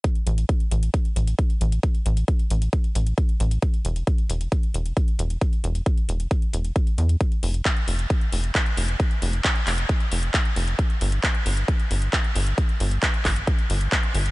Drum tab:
HH |xxxxxxxxxxxxxxxx|xxxxxxxxxxxxxxxx|xxxxxxxxxxxxxxxx|xxxxxxxxxxxxxxxx|
CP |----------------|----------------|----------------|----------------|
BD |o---o---o---o---|o---o---o---o---|o---o---o---o---|o---o---o---o---|

HH |xxoxxxoxxxoxxxox|xxoxxxoxxxoxxxox|xxoxxxoxxxoxxxox|xxoxxxoxxxoxxxox|
CP |----x-------x---|----x-x-----x---|----x-------x---|----x-x-----x---|
BD |o---o---o---o---|o---o---o---o---|o---o---o---o---|o---o-o-o---o---|